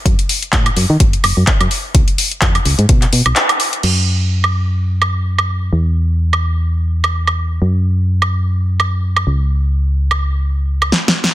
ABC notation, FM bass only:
X:1
M:4/4
L:1/16
Q:"Swing 16ths" 1/4=127
K:C#phr
V:1 name="FM bass" clef=bass
F,, z3 A,, z F,, ^D, F,,, z F,,, F,, z F,, z2 | C,, z3 ^E,, z C,, G,, B,, z B,, B,,, z4 | F,,16 | E,,16 |
F,,12- F,,2 C,,2- | C,,12 z4 |]